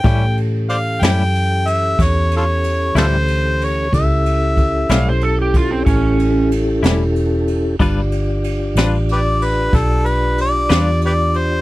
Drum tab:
RD |xxxxxxxxxxxx|xxxxxxxxxxxx|xxxxxxxxxxxx|
SD |---o--o--o--|---o-----o--|---o--o--o--|
BD |o-----o-----|o-o--oo-----|o-----o-----|